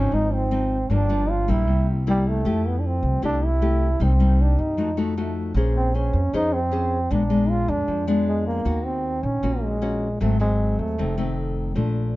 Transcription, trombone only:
Already playing: C#4
0.14 D#4
0.34 C4
0.92 D4
1.30 F4
1.51 E4
2.09 G3
2.29 A3
2.68 B3
2.80 D4
2.86 C4
3.25 D4
3.45 E4
4.03 C4
4.42 D4
4.61 D#4
5.21 A3
5.77 C4
5.96 C#4
6.35 D#4
6.53 C4
7.12 D4
7.50 F4
7.69 D4
8.27 G#3
8.47 A#3
8.85 C4
9.24 C#4
9.63 G#3
10.22 A3
10.41 G#3
10.79 A3

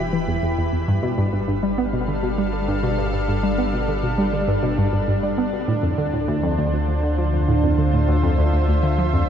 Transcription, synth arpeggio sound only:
0.13 E3
0.28 E2
0.43 E2
0.58 E2
0.73 E2
0.88 G2
1.03 B2
1.18 G2
1.33 G2
1.48 G2
1.63 G3
1.78 B3
1.93 B2
2.08 D3
2.23 B2
2.38 G3
2.53 D3
2.68 G2
2.83 B2
2.98 G2
3.13 G2
3.28 G2
3.43 G3
3.58 B3
3.73 B2
3.88 D3
4.03 B2
4.18 G3
4.33 D3
4.48 G2
4.63 B2
4.78 G2
4.93 G2
5.08 G2
5.23 G3
5.38 B3
5.53 B2
5.68 A2
5.83 F2
5.98 D3
6.13 A2
6.28 D2
6.43 F2
6.58 D2
6.73 D2
6.88 D2
7.03 D3
7.18 F3
7.33 F2
7.48 A2
7.63 F2
7.78 D3
7.94 A2
8.08 D2
8.23 F2
8.38 D2
8.53 D2
8.68 D2
8.83 D3
8.98 F3
9.13 F2

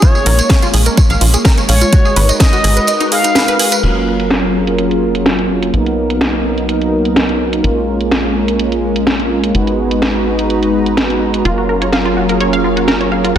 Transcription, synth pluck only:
0.02 F4
0.15 G#4
0.26 A#4
0.39 C#5
0.50 F5
0.63 F4
0.74 G#4
0.86 A#4
0.97 C#5
1.10 F5
1.21 F4
1.34 G#4
1.45 A#4
1.58 C#5
1.69 F5
1.82 F4
1.93 F#4
2.05 G#4
2.16 B4
2.29 D#5
2.40 D#4
2.53 F#4
2.64 G#4
2.77 B4
2.88 D#5
3.01 D#4
3.12 G#4
3.24 D#4
3.36 B4
3.48 B4
3.60 G#4
3.72 B4
11.45 F4
11.58 F#4
11.69 A#4
11.82 C#5
11.93 F5
12.05 F4
12.17 F#4
12.29 A#4
12.41 C#5
12.53 F5
12.64 F4
12.77 F#4
12.88 A#4
13.01 C#5
13.12 F5
13.24 F4

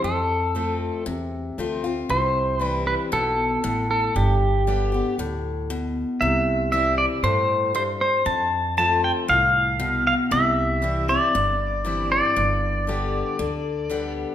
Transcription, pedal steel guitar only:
0.04 A4
2.10 C5
2.60 B4
2.87 B4
3.13 A4
3.91 A4
4.16 G4
6.21 E5
6.72 E5
6.98 D5
7.24 C5
7.76 C5
8.01 C5
8.26 A5
8.78 A5
9.04 G5
9.29 F5
10.07 F5
10.32 E5
11.09 D5
12.12 D5

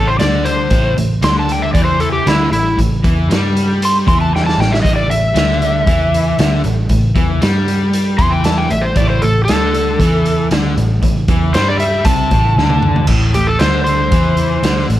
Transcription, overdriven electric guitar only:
Already playing: A2
0.19 D3
0.71 A2
0.97 A2
1.22 D3
1.74 E3
2.26 D3
2.51 A2
2.78 A2
3.04 E3
3.30 G3
4.06 E3
4.58 A2
4.84 A2
5.10 A2
5.34 D3
5.87 E3
6.39 D3
6.65 A2
6.91 A2
7.16 E3
7.42 G3
8.18 E3
8.71 A2
8.97 A2
9.24 A2
9.50 D3
10.01 E3
10.52 D3
10.77 A2
11.04 A2
11.30 E3
11.55 G3
12.06 C3
12.33 A2
12.58 D3
13.08 A2
13.36 A2
13.61 D3
14.13 E3
14.64 D3
14.90 A2

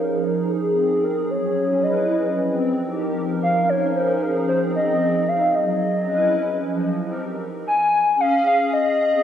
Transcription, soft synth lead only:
Already playing: A#4
0.51 G#4
1.04 A#4
1.30 C#5
1.83 D#5
3.43 F5
3.69 C#5
3.96 C5
4.22 A#4
4.49 C5
4.75 D#5
5.29 F5
5.55 D#5
7.67 G#5
8.20 F5
8.47 F5
8.73 D#5

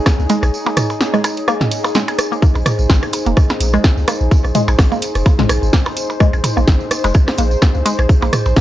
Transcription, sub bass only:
0.19 C#2
0.43 A#1
2.55 A#1
2.79 A#1
2.90 A#1
3.26 F1
3.60 A#1
3.97 C#2
4.21 A#1
4.44 A#1
4.68 A#1
4.79 A#1
5.15 F1
5.39 A#1
5.49 A#1
5.63 G#1
6.33 A#1
6.57 A#1
6.68 A#1
7.04 F1
7.38 A#1
7.75 C#2
7.99 A#1
8.22 A#1
8.46 A#1
8.57 A#1

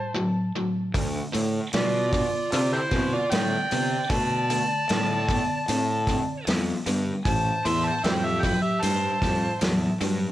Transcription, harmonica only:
Already playing: A5
1.75 D5
2.14 D5
2.52 F4 A4 D5
2.73 G4 A4 C5
3.14 D5
3.31 G5
4.11 A5
7.26 A5
7.66 C6
7.85 A5
8.05 D5 E5 G5
8.25 E5
8.41 G5
8.62 E5
8.81 A5

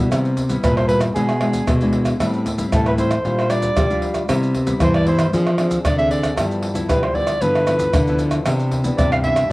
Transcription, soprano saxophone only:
0.64 B4
0.77 C5
0.88 B4
1.15 G#4
2.75 A4
2.87 B4
2.99 C5
3.50 D5
4.83 C5
4.95 D5
5.08 C5
5.86 D5
5.98 E5
6.10 D5
6.89 B4
7.03 C5
7.15 D5
7.41 B4
8.98 D5
9.12 F5
9.23 E5

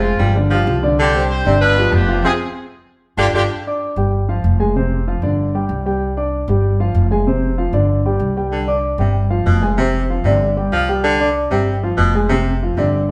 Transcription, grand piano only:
Already playing: G#3 G#4 C5
0.20 F3 F4 G4
0.36 D3 D4 D5
0.51 F3 F4 G4
0.67 F3 F4 G4
0.83 D3 D4 D5
1.14 G3 G4 C5
1.45 D3 D4 D5
1.77 F3 F4 G4
2.08 F3 F4 F5
2.25 C4 F4 G#4
3.18 D4 F4 G4
3.35 D4 F4 G4
3.67 D4 D5 D6
3.97 G3 G4 G5
4.29 F3 F4 F5
4.60 G#3 G#4 G#5
4.76 C3 C4 C5
5.08 F3 F4 F5
5.23 D3 D4 D5
5.55 G3 G4 G5
5.86 G3 G4 G5
6.17 D4 D5 D6
6.49 G3 G4 G5
6.80 F3 F4 F5
7.11 G#3 G#4 G#5
7.27 C3 C4 C5
7.58 F3 F4 F5
7.73 D3 D4 D5
8.06 G3 G4 G5
8.36 G3 G4 G5
8.67 D4 D5 D6
8.99 G3 G4 G5
9.30 F3 F4 F5
9.62 G#3 G#4 G#5
9.78 C3 C4 C5
10.10 F3 F4 F5
10.26 D3 D4 D5
10.57 G3 G4 G5
10.89 G3 G4 G5
11.20 D4 D5 D6
11.52 G3 G4 G5
11.83 F3 F4 F5
12.15 G#3 G#4 G#5
12.31 C3 C4 C5
12.62 F3 F4 F5
12.77 D3 D4 D5

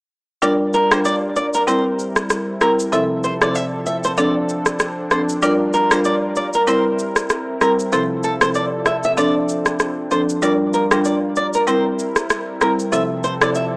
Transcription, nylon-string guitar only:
0.43 D5
0.74 A#4
0.92 C5
1.05 D5
1.36 D5
1.55 A#4
1.68 C5
2.62 A#4
2.93 E5
3.24 C5
3.42 D5
3.55 E5
3.86 E5
4.05 C5
4.17 D5
5.11 C5
5.43 D5
5.74 A#4
5.92 C5
6.05 D5
6.37 D5
6.55 A#4
6.68 C5
7.62 A#4
7.93 C5
8.24 A4
8.42 C5
8.55 D5
8.87 E5
9.05 E5
9.18 D5
10.11 C5
10.43 D5
10.74 A#4
10.92 C5
11.05 D5
11.37 D5
11.55 A#4
11.68 C5
12.62 A#4
12.93 E5
13.24 C5
13.42 D5
13.56 E5

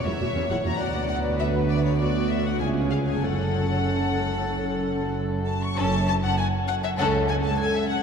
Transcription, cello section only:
0.06 E2
0.21 E2
0.35 E2
0.50 E2
0.65 E2
0.80 D2
2.61 C#2
3.24 F#2
5.77 F#2
6.99 C#2

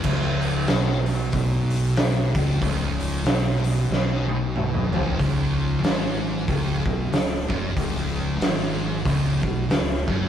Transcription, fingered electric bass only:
0.04 C#1
0.68 B1
1.33 B1
2.35 C#1
2.61 C#1
3.24 B1
3.89 B1
4.92 C#1
5.19 C#1
5.82 G#1
6.48 C#1
6.85 B1
7.10 C#1
7.50 F#1
7.76 C#1
8.40 G#1
9.05 C#1
9.43 B1
9.68 C#1
10.08 F#1

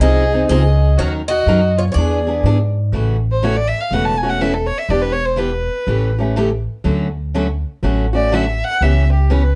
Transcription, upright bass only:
0.00 C2
0.49 C#2
0.98 D#2
1.46 F#2
1.95 E2
2.43 G#2
2.92 A1
3.91 E1
4.89 E1
5.87 A1
6.84 D2
7.83 A1
8.81 C#2

